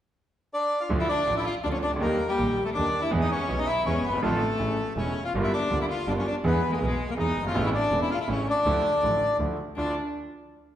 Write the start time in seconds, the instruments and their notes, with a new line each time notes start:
0.54 bandoneon D4 D5
0.80 bandoneon F4 F5
0.89 grand piano D2 D3 F3 A3 F4, double bass D2
0.99 bandoneon E4 E5, violin E4
1.09 bandoneon D4 D5, violin D4
1.27 grand piano A1 A2 D3 F3 A3 F4, double bass A1
1.37 violin E4, bandoneon E4 E5
1.46 violin F4, bandoneon F4 F5
1.64 double bass D2, grand piano D2 D3 F3 A3 F4, violin D4, bandoneon D4 D5
1.72 violin C#4, bandoneon C#4 C#5
1.83 double bass C#2, violin D4, bandoneon D4 D5
1.87 grand piano C2
1.92 grand piano C#2 D2
2.01 grand piano D#2 D#3 G3 A#3 G4, double bass D#2, bandoneon A#3 A#4, violin A#3
2.29 violin G3, bandoneon G3 G4
2.38 grand piano A#1 A#2 D#3 G3 A#3 G4, double bass A#1
2.65 violin A3, bandoneon A3 A4
2.74 grand piano D#2 D#3 G3 A#3 G4, double bass D#2, violin D4, bandoneon D4 D5
3.01 violin E4, bandoneon E4 E5
3.11 grand piano E2 E3 G#3 B3 G#4, double bass E2
3.21 bandoneon D#4 D#5, violin D#4
3.32 bandoneon C#4 C#5, violin C#4
3.48 grand piano B1 B2 E3 G#3 B3 G#4, double bass B1
3.58 bandoneon D#4 D#5, violin D#4
3.66 bandoneon E4 E5, violin E4
3.86 double bass E2, grand piano E2 E3 G#3 B3 G#4, bandoneon C#4 C#5, violin C#4
4.03 double bass G1, bandoneon B3 B4, violin B3
4.09 grand piano F#1
4.13 grand piano G1
4.18 grand piano G#1
4.22 grand piano A1 A2 D3 F3 A3 F4, double bass A1, bandoneon A3 A4, violin A3
4.59 grand piano A1 A2 C#3 E3 A3 E4, double bass A1
4.97 double bass E1, grand piano E1 E2 C#3 E3 A3 E4, bandoneon C#4 C#5, violin C#4
5.24 violin F4, bandoneon F4 F5
5.34 double bass G1, grand piano G1 G2 D3 G3 A#3 F4
5.43 violin E4, bandoneon E4 E5
5.53 bandoneon D4 D5, violin D4
5.70 grand piano D2 D3 G3 A#3 F4, double bass D2
5.81 bandoneon E4 E5, violin E4
5.90 violin F4, bandoneon F4 F5
6.07 grand piano G1 G2 D3 G3 A#3 F4, double bass G1, violin D4, bandoneon D4 D5
6.18 violin C#4, bandoneon C#4 C#5
6.27 bandoneon D4 D5, violin D4
6.44 grand piano E2 E3 G#3 B3 G#4, double bass E2, violin B3, bandoneon B3 B4
6.72 violin G#3, bandoneon G#3 G#4
6.77 grand piano B1 B2 E3 G#3 G#4, violin A#3, bandoneon A#4
6.81 double bass B1, violin G#3, grand piano B3
6.86 bandoneon G#3 G#4
7.10 violin A#3, bandoneon A#3 A#4
7.17 grand piano E2 E3 G#3 B3 G#4, double bass E2, violin D#4, bandoneon D#4 D#5
7.37 double bass G1
7.43 grand piano F#1 G1
7.47 violin F4, bandoneon F4 F5
7.51 grand piano G#1 A1 A2 C#3 E3, double bass A1
7.56 grand piano A3 E4
7.65 violin E4, bandoneon E4 E5
7.74 bandoneon D4 D5, violin D4
7.91 double bass E1, grand piano E1 E2 C#3 E3 A3 E4
8.02 violin E4, bandoneon E4 E5
8.11 bandoneon F4 F5, violin F4
8.20 bandoneon E4 E5, violin E4
8.28 grand piano A1 A2 C#3 E3 A3 E4, double bass A1, violin C#4, bandoneon C#4
8.32 bandoneon C#5
8.47 violin D4, bandoneon D4 D5
8.66 double bass D2, grand piano D2 D3 F3 A3 E4
9.02 double bass A1, grand piano A1 A2 D3 F3 A3 E4
9.39 double bass D2, grand piano D2 D3 F3 A3 E4
9.76 grand piano D2 D4 E4 F4, double bass D2, violin D4, bandoneon D5